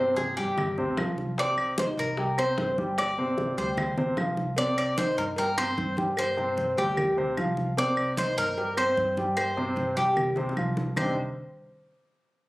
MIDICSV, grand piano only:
0, 0, Header, 1, 2, 480
1, 0, Start_track
1, 0, Key_signature, -3, "minor"
1, 0, Tempo, 399734
1, 1660, Time_signature, 4, 2, 24, 8
1, 14997, End_track
2, 0, Start_track
2, 0, Title_t, "Grand piano"
2, 0, Program_c, 0, 0
2, 0, Note_on_c, 0, 48, 88
2, 0, Note_on_c, 0, 60, 87
2, 0, Note_on_c, 0, 72, 82
2, 370, Note_off_c, 0, 48, 0
2, 372, Note_off_c, 0, 60, 0
2, 374, Note_off_c, 0, 72, 0
2, 453, Note_on_c, 0, 55, 79
2, 456, Note_on_c, 0, 67, 76
2, 458, Note_on_c, 0, 79, 80
2, 849, Note_off_c, 0, 55, 0
2, 851, Note_off_c, 0, 67, 0
2, 852, Note_off_c, 0, 79, 0
2, 934, Note_on_c, 0, 48, 92
2, 940, Note_on_c, 0, 60, 87
2, 943, Note_on_c, 0, 72, 87
2, 1133, Note_off_c, 0, 48, 0
2, 1137, Note_off_c, 0, 60, 0
2, 1138, Note_off_c, 0, 72, 0
2, 1176, Note_on_c, 0, 53, 72
2, 1182, Note_on_c, 0, 65, 76
2, 1184, Note_on_c, 0, 77, 71
2, 1571, Note_off_c, 0, 53, 0
2, 1575, Note_off_c, 0, 65, 0
2, 1576, Note_off_c, 0, 77, 0
2, 1654, Note_on_c, 0, 48, 78
2, 1659, Note_on_c, 0, 60, 89
2, 1662, Note_on_c, 0, 72, 82
2, 2050, Note_off_c, 0, 48, 0
2, 2053, Note_off_c, 0, 60, 0
2, 2055, Note_off_c, 0, 72, 0
2, 2137, Note_on_c, 0, 51, 62
2, 2140, Note_on_c, 0, 63, 73
2, 2144, Note_on_c, 0, 75, 71
2, 2532, Note_off_c, 0, 51, 0
2, 2533, Note_off_c, 0, 63, 0
2, 2536, Note_off_c, 0, 75, 0
2, 2616, Note_on_c, 0, 55, 68
2, 2620, Note_on_c, 0, 67, 73
2, 2624, Note_on_c, 0, 79, 65
2, 2814, Note_off_c, 0, 55, 0
2, 2817, Note_off_c, 0, 67, 0
2, 2819, Note_off_c, 0, 79, 0
2, 2858, Note_on_c, 0, 60, 79
2, 2862, Note_on_c, 0, 72, 81
2, 2865, Note_on_c, 0, 84, 78
2, 3252, Note_off_c, 0, 60, 0
2, 3254, Note_off_c, 0, 72, 0
2, 3256, Note_off_c, 0, 84, 0
2, 3339, Note_on_c, 0, 55, 79
2, 3342, Note_on_c, 0, 67, 76
2, 3344, Note_on_c, 0, 79, 75
2, 3733, Note_off_c, 0, 55, 0
2, 3735, Note_off_c, 0, 67, 0
2, 3736, Note_off_c, 0, 79, 0
2, 3820, Note_on_c, 0, 48, 83
2, 3824, Note_on_c, 0, 60, 88
2, 3828, Note_on_c, 0, 72, 85
2, 4213, Note_off_c, 0, 48, 0
2, 4215, Note_off_c, 0, 60, 0
2, 4218, Note_off_c, 0, 72, 0
2, 4292, Note_on_c, 0, 55, 74
2, 4295, Note_on_c, 0, 67, 76
2, 4299, Note_on_c, 0, 79, 73
2, 4688, Note_off_c, 0, 55, 0
2, 4690, Note_off_c, 0, 67, 0
2, 4692, Note_off_c, 0, 79, 0
2, 4776, Note_on_c, 0, 48, 79
2, 4780, Note_on_c, 0, 60, 86
2, 4784, Note_on_c, 0, 72, 90
2, 4974, Note_off_c, 0, 48, 0
2, 4976, Note_off_c, 0, 60, 0
2, 4979, Note_off_c, 0, 72, 0
2, 5015, Note_on_c, 0, 53, 71
2, 5020, Note_on_c, 0, 65, 73
2, 5022, Note_on_c, 0, 77, 72
2, 5410, Note_off_c, 0, 53, 0
2, 5413, Note_off_c, 0, 65, 0
2, 5414, Note_off_c, 0, 77, 0
2, 5494, Note_on_c, 0, 48, 80
2, 5497, Note_on_c, 0, 60, 86
2, 5500, Note_on_c, 0, 72, 86
2, 5889, Note_off_c, 0, 48, 0
2, 5891, Note_off_c, 0, 60, 0
2, 5893, Note_off_c, 0, 72, 0
2, 5978, Note_on_c, 0, 51, 71
2, 5981, Note_on_c, 0, 63, 67
2, 5985, Note_on_c, 0, 75, 68
2, 6371, Note_off_c, 0, 51, 0
2, 6373, Note_off_c, 0, 63, 0
2, 6376, Note_off_c, 0, 75, 0
2, 6459, Note_on_c, 0, 55, 63
2, 6462, Note_on_c, 0, 67, 64
2, 6467, Note_on_c, 0, 79, 65
2, 6655, Note_off_c, 0, 55, 0
2, 6657, Note_off_c, 0, 67, 0
2, 6660, Note_off_c, 0, 79, 0
2, 6697, Note_on_c, 0, 60, 80
2, 6700, Note_on_c, 0, 72, 80
2, 6704, Note_on_c, 0, 84, 81
2, 7091, Note_off_c, 0, 60, 0
2, 7092, Note_off_c, 0, 72, 0
2, 7095, Note_off_c, 0, 84, 0
2, 7175, Note_on_c, 0, 55, 68
2, 7180, Note_on_c, 0, 67, 70
2, 7182, Note_on_c, 0, 79, 74
2, 7569, Note_off_c, 0, 55, 0
2, 7572, Note_off_c, 0, 67, 0
2, 7574, Note_off_c, 0, 79, 0
2, 7651, Note_on_c, 0, 48, 83
2, 7656, Note_on_c, 0, 60, 86
2, 7660, Note_on_c, 0, 72, 84
2, 8047, Note_off_c, 0, 48, 0
2, 8050, Note_off_c, 0, 60, 0
2, 8052, Note_off_c, 0, 72, 0
2, 8136, Note_on_c, 0, 55, 82
2, 8138, Note_on_c, 0, 67, 81
2, 8144, Note_on_c, 0, 79, 78
2, 8530, Note_off_c, 0, 55, 0
2, 8531, Note_off_c, 0, 67, 0
2, 8534, Note_off_c, 0, 79, 0
2, 8614, Note_on_c, 0, 48, 87
2, 8620, Note_on_c, 0, 60, 88
2, 8621, Note_on_c, 0, 72, 89
2, 8812, Note_off_c, 0, 48, 0
2, 8815, Note_off_c, 0, 60, 0
2, 8816, Note_off_c, 0, 72, 0
2, 8854, Note_on_c, 0, 53, 78
2, 8857, Note_on_c, 0, 65, 71
2, 8862, Note_on_c, 0, 77, 81
2, 9249, Note_off_c, 0, 53, 0
2, 9250, Note_off_c, 0, 65, 0
2, 9253, Note_off_c, 0, 77, 0
2, 9335, Note_on_c, 0, 48, 87
2, 9339, Note_on_c, 0, 60, 81
2, 9343, Note_on_c, 0, 72, 90
2, 9729, Note_off_c, 0, 48, 0
2, 9731, Note_off_c, 0, 60, 0
2, 9733, Note_off_c, 0, 72, 0
2, 9814, Note_on_c, 0, 51, 65
2, 9815, Note_on_c, 0, 63, 70
2, 9820, Note_on_c, 0, 75, 73
2, 10208, Note_off_c, 0, 51, 0
2, 10209, Note_off_c, 0, 63, 0
2, 10212, Note_off_c, 0, 75, 0
2, 10295, Note_on_c, 0, 55, 70
2, 10301, Note_on_c, 0, 67, 69
2, 10303, Note_on_c, 0, 79, 62
2, 10492, Note_off_c, 0, 55, 0
2, 10496, Note_off_c, 0, 67, 0
2, 10497, Note_off_c, 0, 79, 0
2, 10534, Note_on_c, 0, 60, 77
2, 10538, Note_on_c, 0, 72, 79
2, 10540, Note_on_c, 0, 84, 78
2, 10928, Note_off_c, 0, 60, 0
2, 10931, Note_off_c, 0, 72, 0
2, 10932, Note_off_c, 0, 84, 0
2, 11020, Note_on_c, 0, 55, 78
2, 11022, Note_on_c, 0, 67, 79
2, 11025, Note_on_c, 0, 79, 71
2, 11412, Note_off_c, 0, 55, 0
2, 11413, Note_off_c, 0, 67, 0
2, 11414, Note_off_c, 0, 79, 0
2, 11492, Note_on_c, 0, 48, 93
2, 11496, Note_on_c, 0, 60, 90
2, 11498, Note_on_c, 0, 72, 86
2, 11887, Note_off_c, 0, 48, 0
2, 11889, Note_off_c, 0, 60, 0
2, 11891, Note_off_c, 0, 72, 0
2, 11968, Note_on_c, 0, 55, 79
2, 11972, Note_on_c, 0, 67, 85
2, 11976, Note_on_c, 0, 79, 75
2, 12365, Note_off_c, 0, 55, 0
2, 12367, Note_off_c, 0, 67, 0
2, 12369, Note_off_c, 0, 79, 0
2, 12452, Note_on_c, 0, 48, 89
2, 12457, Note_on_c, 0, 60, 86
2, 12460, Note_on_c, 0, 72, 88
2, 12650, Note_off_c, 0, 48, 0
2, 12653, Note_off_c, 0, 60, 0
2, 12655, Note_off_c, 0, 72, 0
2, 12698, Note_on_c, 0, 53, 74
2, 12699, Note_on_c, 0, 65, 72
2, 12705, Note_on_c, 0, 77, 76
2, 13090, Note_off_c, 0, 53, 0
2, 13091, Note_off_c, 0, 65, 0
2, 13095, Note_off_c, 0, 77, 0
2, 13175, Note_on_c, 0, 48, 96
2, 13175, Note_on_c, 0, 55, 85
2, 13179, Note_on_c, 0, 60, 78
2, 13183, Note_on_c, 0, 62, 79
2, 13185, Note_on_c, 0, 63, 81
2, 13187, Note_on_c, 0, 67, 98
2, 13398, Note_off_c, 0, 55, 0
2, 13399, Note_off_c, 0, 48, 0
2, 13401, Note_off_c, 0, 60, 0
2, 13403, Note_off_c, 0, 62, 0
2, 13404, Note_off_c, 0, 63, 0
2, 13405, Note_off_c, 0, 67, 0
2, 14997, End_track
0, 0, End_of_file